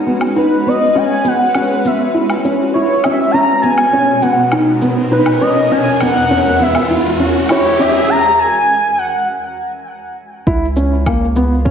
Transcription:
Already playing: G#3 C#4 F#4 B4
0.07 B3
0.21 low woodblock
0.36 D#4 B4
0.67 B3 D#5
0.95 C#4 G#5, riser
1.24 B3 F#5, shaker
1.55 C#4, low woodblock
1.85 B3 E5, shaker
2.14 E4
2.30 low woodblock
2.44 C#4, shaker
2.74 E4 C#5
3.03 C#4 E5, low woodblock, shaker
3.31 B2 C#4 A#5
3.61 B3 G#5, shaker
3.78 low woodblock
3.93 C#4
4.22 B3 F#5, shaker
4.41 A#4
4.52 D#4, low woodblock
4.82 B3, shaker
5.12 D#4 B4
5.26 low woodblock
5.41 C#4 D#5, shaker
5.71 E2 C#4 G#5
6.01 B3 F#5, low woodblock, shaker
6.31 C#4
6.60 B3 E5, shaker
6.75 low woodblock
6.91 E4
7.19 C#4, shaker
7.49 E4 C#5, low woodblock
7.79 C#4 E5, shaker
8.09 A#5
8.39 G#5
8.98 F#5
10.47 C#2 G#3 E4, kick
10.76 C#4, shaker
11.06 A#3, kick, low woodblock
11.36 B3, shaker
11.65 C#4, kick

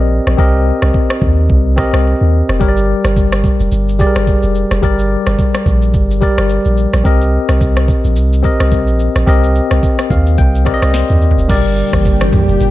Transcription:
Already playing: C4 G4 A#4 D5 D#5
0.00 A#1
0.27 A#1, cross-stick
0.37 C2 C4 G4 A#4 D#5, kick
0.82 C2, cross-stick
0.94 kick
1.10 cross-stick
1.22 D#2, kick
1.50 C2, kick
1.76 C4 G4 A#4 D#5, kick, cross-stick
1.93 C2, cross-stick
2.21 D#2
2.49 F1, cross-stick
2.59 G1 G3 G4 A#4 C#5, kick, shaker
2.68 D5
2.77 shaker
3.05 G1, cross-stick, shaker
3.17 kick, shaker
3.32 cross-stick, shaker
3.44 kick, shaker
3.60 F1, shaker
3.72 G1, shaker
3.89 shaker
3.98 G3 G4 G#4 D5, kick, shaker
4.07 A#4
4.16 G1, cross-stick, shaker
4.27 kick, shaker
4.43 F1, shaker
4.55 shaker
4.71 F1, cross-stick, shaker
4.82 G1 G3 G4 A#4 D5, kick, shaker
4.99 shaker
5.27 G1, cross-stick, shaker
5.39 kick, shaker
5.55 cross-stick, shaker
5.66 A#1, kick, shaker
5.82 shaker
5.94 G1, kick, shaker
6.11 shaker
6.21 G3 G4 A#4 D5, kick, shaker
6.38 G1, cross-stick, shaker
6.49 shaker
6.65 A#1, shaker
6.77 shaker
6.93 A#1, cross-stick, shaker
7.04 C2 C4 G4 A#4 D#5, kick, shaker
7.21 shaker
7.49 C2, cross-stick, shaker
7.61 kick, shaker
7.77 cross-stick, shaker
7.88 kick, shaker
8.04 A#1, shaker
8.16 C2, shaker
8.33 shaker
8.43 C4 G4 A#4 D#5, kick, shaker
8.60 C2, cross-stick, shaker
8.71 kick, shaker
8.87 A#1, shaker
9.00 shaker
9.16 A#1, cross-stick, shaker
9.26 C2 C4 G4 A#4 D#5, kick, shaker
9.44 shaker
9.55 shaker
9.71 C2, cross-stick, shaker
9.83 kick, shaker
9.99 cross-stick, shaker
10.10 D#2 F5, kick, shaker
10.26 shaker
10.38 C2 G5, kick, shaker
10.55 shaker
10.65 C4 G4 A#4 D5 D#5, kick, cross-stick, shaker
10.74 D#5
10.82 C2, cross-stick, shaker
10.94 C5, snare, shaker
11.09 D#2, mid tom, shaker
11.22 shaker
11.31 floor tom
11.38 F1, shaker
11.48 G1 A#2 D3 G3 D4 G4 A#4 D5, kick, crash, low conga, shaker
11.66 shaker
11.78 shaker
11.93 G1, kick, cross-stick, high conga, shaker
12.05 kick, shaker
12.21 cross-stick, high conga, shaker
12.33 kick, mid tom, high conga, low conga, shaker
12.49 F1, shaker
12.60 G1, shaker

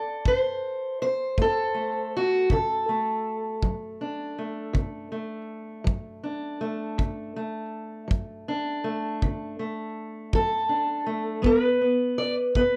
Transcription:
Already playing: A4 D5
0.25 D3 C5, kick
1.02 C5
1.38 A3 A4, kick
1.74 A3
2.17 F#4
2.50 D3 A4, kick
2.89 A3
3.63 F#3, kick
4.01 D4
4.38 A3
4.73 D3, kick
5.12 A3
5.84 F#3, kick
6.24 D4
6.61 A3
6.98 D3, kick
7.36 A3
8.08 F#3, kick
8.48 D4
8.84 A3
9.22 D3, kick
9.59 A3
10.33 F#3 A4, kick
10.69 D4
11.06 A3
11.42 G3 B3, kick
11.46 B4
11.81 B3
12.18 D5
12.55 B3 B4, kick

